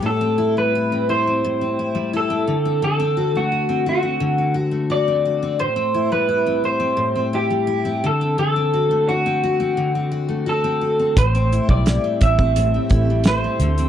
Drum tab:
HH |----------------|----------------|----------------|----------------|
SD |----------------|----------------|----------------|----------------|
BD |----------------|----------------|----------------|----------------|

HH |xxx-x-x-x-x-x-xx|
SD |----o-------o---|
BD |o--o--oo--o-----|